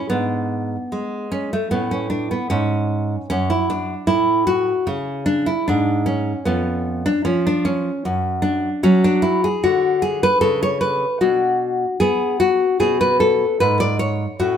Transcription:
0.10 G#2 B3 D4
0.92 G#3
1.32 C#4
1.53 A3
1.71 A2 B3 C#4
1.91 C#4
2.10 D4
2.31 B3
2.50 G#2 C#4
3.30 F#2 C#4
3.50 E4
3.70 D4
4.07 A2 E4
4.47 F#4
4.87 C#3 C#4
5.26 D4
5.46 E4
5.68 G#2 D4
6.06 C#4
6.45 F2 B3 C#4
7.06 D4
7.25 F3 C#4
7.47 D4
7.65 C#4
8.05 F#2 C#4
8.42 D4
8.83 F#3 C#4
9.04 D4
9.22 E4
9.44 G#4
9.64 D3 D4 F#4
10.02 G#4
10.23 B4
10.41 C#3 A4
10.63 C#5
10.81 B4
11.21 B2 D4 F#4
12.00 B3 G#4
12.40 F#4
12.80 B2 C#4 G#4
13.01 B4
13.20 A4
13.60 G#2 B4
13.80 D5
13.99 C#5
14.39 A2 C#4 F#4

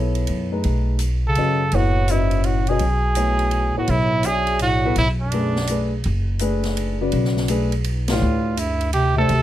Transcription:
Already playing: B1 B3 E4 A4 C#5
0.15 ride
0.27 F#2, ride
0.52 A3 D#4 G#4 B4
0.64 B1, ride
0.99 hi-hat pedal, ride
1.26 C#3 A4
1.35 F#2 C#4 F#4 B4 D#5, ride
1.72 F#1 A2 B3 E4 F#4 A4 C#5, ride
2.08 G#2 C#4 E4 F#4 B4 D#5, hi-hat pedal, ride
2.31 ride
2.44 A2 F#4, ride
2.67 B2 C#4 F#4 G#4 B4 D#5, ride
2.79 B1, ride
3.15 A3 B3 E4 C#5, hi-hat pedal, ride
3.39 ride
3.51 ride
3.76 A2 B3 E4 F#4 A4 C#5, muted upright bass stroke
3.87 B1 A2 E4, ride
4.23 B2 D4 G#4 C#5, hi-hat pedal, ride
4.27 E5
4.47 ride
4.59 A2 F#4, ride
4.85 B3 E4 A4 B4
4.96 B1 A2 E4, ride
5.21 F#2 D4
5.32 A3 D4 G#4 B4, ride
5.56 snare
5.67 A3 D4 G#4 B4, hi-hat pedal, ride
6.04 F#1, ride
6.39 A3 D4 G#4 B4, hi-hat pedal, ride
6.63 snare, ride
6.77 ride
7.01 C#3 F#4 B4 D5
7.12 B1, ride
7.25 snare
7.37 snare
7.48 A3 D4 G#4 B4, hi-hat pedal, ride
7.72 ride
7.84 ride
8.08 A2 A3 D4 F4 G4 B4, snare, ride
8.22 D2
8.57 G2 E4, hi-hat pedal, ride
8.81 ride
8.93 C3 G4, ride
9.16 C3 A3 D4 G4 A4 C5
9.29 D2, ride

